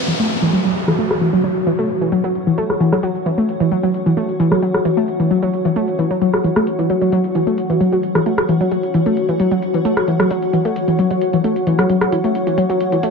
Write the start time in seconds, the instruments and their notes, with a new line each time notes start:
Already playing: ambient pad F#4 E5, downlifter
0.08 synth arpeggio sound E3, closed hi-hat
0.20 synth arpeggio sound A3
0.31 ambient pad C#5, closed hi-hat
0.42 synth arpeggio sound E3
0.53 synth arpeggio sound F#3
0.65 synth arpeggio sound F#3
0.76 ambient pad F#5, closed hi-hat
0.87 synth arpeggio sound E3, cross-stick
0.99 synth arpeggio sound A3
1.11 cross-stick, closed hi-hat
1.21 synth arpeggio sound E3, closed hi-hat
1.33 synth arpeggio sound F#3, closed hi-hat
1.44 synth arpeggio sound F#3, closed hi-hat
1.56 closed hi-hat
1.67 synth arpeggio sound E3, closed hi-hat
1.79 synth arpeggio sound A3, closed hi-hat
1.90 closed hi-hat
2.01 synth arpeggio sound E3, closed hi-hat
2.12 synth arpeggio sound F#3, closed hi-hat
2.24 synth arpeggio sound F#3, closed hi-hat
2.35 closed hi-hat
2.47 synth arpeggio sound E3, closed hi-hat
2.58 synth arpeggio sound A3, closed hi-hat
2.70 cross-stick, closed hi-hat
2.80 synth arpeggio sound E3, closed hi-hat
2.92 synth arpeggio sound F#3, cross-stick, closed hi-hat
3.03 synth arpeggio sound F#3, closed hi-hat
3.15 closed hi-hat
3.26 synth arpeggio sound E3, closed hi-hat
3.38 synth arpeggio sound A3, closed hi-hat
3.49 closed hi-hat
3.60 synth arpeggio sound E3, closed hi-hat
3.71 synth arpeggio sound F#3, closed hi-hat
3.83 synth arpeggio sound F#3, closed hi-hat
3.94 closed hi-hat
4.06 synth arpeggio sound E3, closed hi-hat
4.17 synth arpeggio sound A3, closed hi-hat
4.29 closed hi-hat
4.40 synth arpeggio sound E3, closed hi-hat
4.51 synth arpeggio sound F#3, cross-stick, closed hi-hat
4.62 synth arpeggio sound F#3, closed hi-hat
4.74 cross-stick, closed hi-hat
4.85 synth arpeggio sound E3, closed hi-hat
4.97 synth arpeggio sound A3, closed hi-hat
5.08 closed hi-hat
5.20 synth arpeggio sound E3, closed hi-hat
5.31 synth arpeggio sound F#3, closed hi-hat
5.42 synth arpeggio sound F#3, closed hi-hat
5.54 closed hi-hat
5.65 synth arpeggio sound E3, closed hi-hat
5.76 synth arpeggio sound A3, closed hi-hat
5.88 closed hi-hat
5.99 synth arpeggio sound E3, closed hi-hat
6.10 synth arpeggio sound F#3, closed hi-hat
6.21 synth arpeggio sound F#3, closed hi-hat
6.33 cross-stick, closed hi-hat
6.44 synth arpeggio sound E3, closed hi-hat
6.56 synth arpeggio sound A3, cross-stick, closed hi-hat
6.67 closed hi-hat
6.79 synth arpeggio sound E3, closed hi-hat
6.90 synth arpeggio sound F#3, closed hi-hat
7.01 synth arpeggio sound F#3, closed hi-hat
7.12 synth arpeggio sound F#3, closed hi-hat
7.24 closed hi-hat
7.35 synth arpeggio sound E3, closed hi-hat
7.47 synth arpeggio sound A3, closed hi-hat
7.58 closed hi-hat
7.70 synth arpeggio sound E3, closed hi-hat
7.81 synth arpeggio sound F#3, closed hi-hat
7.92 synth arpeggio sound F#3, closed hi-hat
8.03 closed hi-hat
8.15 synth arpeggio sound E3, cross-stick, closed hi-hat
8.26 synth arpeggio sound A3, closed hi-hat
8.38 cross-stick, closed hi-hat
8.49 synth arpeggio sound E3, closed hi-hat
8.61 synth arpeggio sound F#3, closed hi-hat
8.71 synth arpeggio sound F#3, closed hi-hat
8.83 closed hi-hat
8.94 synth arpeggio sound E3, closed hi-hat
9.06 synth arpeggio sound A3, closed hi-hat
9.17 closed hi-hat
9.29 synth arpeggio sound E3, closed hi-hat
9.40 synth arpeggio sound F#3, closed hi-hat
9.51 synth arpeggio sound F#3, closed hi-hat
9.62 closed hi-hat
9.74 synth arpeggio sound E3, closed hi-hat
9.85 synth arpeggio sound A3, closed hi-hat
9.97 cross-stick, closed hi-hat
10.08 synth arpeggio sound E3, closed hi-hat
10.20 synth arpeggio sound F#3, cross-stick, closed hi-hat
10.31 synth arpeggio sound F#3, closed hi-hat
10.42 closed hi-hat
10.53 synth arpeggio sound E3, closed hi-hat
10.65 synth arpeggio sound A3, closed hi-hat
10.76 closed hi-hat
10.88 synth arpeggio sound E3, closed hi-hat
10.99 synth arpeggio sound F#3, closed hi-hat
11.11 synth arpeggio sound F#3, closed hi-hat
11.21 closed hi-hat
11.33 synth arpeggio sound E3, closed hi-hat
11.44 synth arpeggio sound A3, closed hi-hat
11.56 closed hi-hat
11.67 synth arpeggio sound E3, closed hi-hat
11.79 synth arpeggio sound F#3, cross-stick, closed hi-hat
11.89 synth arpeggio sound F#3, closed hi-hat
12.01 cross-stick, closed hi-hat
12.12 synth arpeggio sound E3, closed hi-hat
12.24 synth arpeggio sound A3, closed hi-hat
12.35 closed hi-hat
12.47 synth arpeggio sound E3, closed hi-hat
12.58 synth arpeggio sound F#3, closed hi-hat
12.69 synth arpeggio sound F#3, closed hi-hat
12.80 closed hi-hat
12.92 synth arpeggio sound E3, closed hi-hat
13.03 synth arpeggio sound A3, closed hi-hat